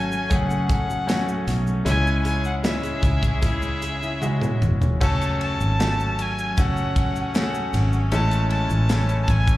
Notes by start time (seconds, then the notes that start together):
Already playing: G#1 F#2 F#3 A3 C#4 F#4 A4 G#5
0.12 A3, shaker
0.29 F#1 F#2 A3 C#4 G#4, kick, closed hi-hat, shaker
0.35 F#5
0.50 A3, shaker
0.69 A4 F#5, kick, closed hi-hat, shaker
0.90 F#4, shaker
1.07 F#3 A3 C#4 F#4, snare, closed hi-hat, shaker
1.28 A4, shaker
1.47 B1 F#4, snare, closed hi-hat, shaker
1.67 A3, shaker
1.85 C#2 C#3 G#3 C#4 E4 G#4 G#5, closed hi-hat, shaker
2.05 C#4, shaker
2.24 G#4 G#5, closed hi-hat
2.44 E4 F#5, shaker
2.63 G#3 C#4 E4 E5, snare, closed hi-hat, shaker
2.83 G#4, closed hi-hat, shaker
3.03 C#2 E4, kick, closed hi-hat, shaker
3.23 C#4, kick, shaker
3.42 C#3 G#3 C#4 E4 E5, kick, closed hi-hat, shaker
3.62 C#4, shaker
3.82 G#4, closed hi-hat, shaker
4.02 E4, shaker
4.22 G#3 C#4 F#4, high tom, shaker
4.41 G#4, mid tom, shaker
4.62 E1 E4, mid tom, shaker
4.81 C#4, floor tom, shaker
5.00 F#1 F#3 A3 C#4 F#4 A4 A5, kick, crash, shaker
5.21 ride, shaker
5.41 A5, ride
5.60 G#1, shaker
5.79 A3 C#4 F#4 A4, snare, ride, shaker
6.00 shaker
6.19 G#5, ride, shaker
6.39 shaker
6.57 F#1 A3 C#4 F#4 A4 F#5, kick, ride, shaker
6.77 shaker
6.96 kick, ride, shaker
7.16 shaker
7.35 A3 C#4 F#4 G#4 F#5, snare, ride, shaker
7.42 A4
7.55 shaker
7.73 G#1, snare, ride, shaker
7.93 shaker
8.12 A1 A2 E3 G#3 A3 C#4 E4 A5, ride, shaker
8.31 ride, shaker
8.50 A5, ride
8.70 A1, shaker
8.89 A3 C#4 E4 A4, snare, ride, shaker
9.09 ride, shaker
9.23 A5
9.28 A1 G#5, kick, ride, shaker
9.48 kick, shaker